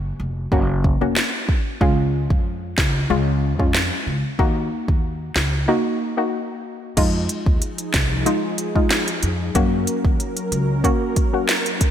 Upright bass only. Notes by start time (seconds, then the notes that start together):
Already playing: F#1
0.20 F1
0.52 F#1
1.01 F1
1.81 C#2
2.30 F2
2.78 C#2
3.10 C#2
3.59 F2
4.07 C#2
4.39 D#2
4.88 D#2
5.36 C#2
6.97 F2
7.46 D#2
7.94 C2
9.23 F2
9.55 F#2
10.05 D#2
10.52 C#2